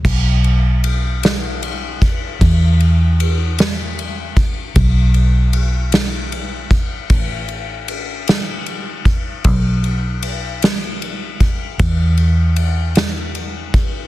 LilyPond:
<<
  \new Staff \with { instrumentName = "Fingered electric bass" } { \clef bass \time 6/8 \key e \lydian \tempo 4. = 51 b,,2. | e,2. | b,,2. | a,,2. |
b,,2. | e,2. | }
  \new DrumStaff \with { instrumentName = "Drums" } \drummode { \time 6/8 <cymc bd>8 cymr8 cymr8 <cymr sn>8 cymr8 <bd cymr>8 | <bd cymr>8 cymr8 cymr8 <cymr sn>8 cymr8 <bd cymr>8 | <bd cymr>8 cymr8 cymr8 <cymr sn>8 cymr8 <bd cymr>8 | <bd cymr>8 cymr8 cymr8 <cymr sn>8 cymr8 <bd cymr>8 |
<bd cymr>8 cymr8 cymr8 <cymr sn>8 cymr8 <bd cymr>8 | <bd cymr>8 cymr8 cymr8 <cymr sn>8 cymr8 <bd cymr>8 | }
>>